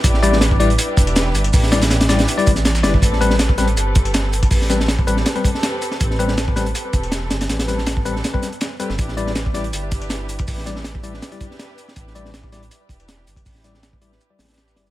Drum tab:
HH |x---x---x---x-x-x---x-x-x---x-x-|o---x-x-x-x-x-x-x-x-x---x---x---|x---x---x---x-x-x---x-x-x---x-x-|o---x---x---x---x-x-x---x---x---|
SH |x---x---x-------x---x---x---x---|x---x-x-x---x---x---x-x-x-x-x---|x---x---x---x---x---x---x---x---|x---x---x---x---x---x---x---x---|
SD |--o---o-o---------------o-------|--o-o-o-o-o-o-o-------o-o-o-o-o-|--o---o-o---o-----------o-------|--o-o-o-o-----o-o-----o-o-----o-|
BD |o---------o---------o-----------|o-------------------o---------o-|o---------o---------o---------o-|o---------o---------o-----------|

HH |x---x---x---x-x-x---x-x-x---x-x-|x-x-x---x---x---x---x-x-x---x---|x---x---x---x-x-x---x-x-x---x-x-|o---x---x---x---x-x-x---x---x---|
SH |x---x---x---x---x---x---x---x---|x---x---x---x---x---x---x---x---|x---x---x---x---x---x---x---x---|x---x---x---x---x---x---x---x---|
SD |--o---o-o---o-----------o---o-o-|o-o-o-o-o-----o-o---o---o-----o-|--o---o-o---o-----------o-------|--o-o-o-o-----o-o-----o-o-----o-|
BD |o---------o---------o-----------|----------o-------o-------------|o---------o---------o---------o-|o---------o---------o-----------|

HH |x---x---x---x-x-x---x-x-x---x-x-|o---x---x---x-------xxxxx---x---|
SH |x---x---x---x---x---x---x---x---|x---x---x---x---x---x---x-x---x-|
SD |--o---o-o---o-----------o-------|--o-o-o-o-----o-----ooooo-o-o---|
BD |o---------o---------o---------o-|o---------o---------------------|